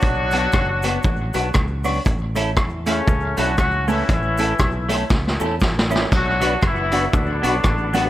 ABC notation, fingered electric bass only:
X:1
M:4/4
L:1/8
Q:"Swing" 1/4=118
K:Bm
V:1 name="Fingered electric bass" clef=bass
B,,,2 F,,,2 A,,, B,,, C,,2 | A,,,2 E,,2 C,, B,,, C,,2 | A,,,2 B,,,2 C,, E,, A,,,2 | B,,,2 F,,,2 D,, B,,, A,,,2 |]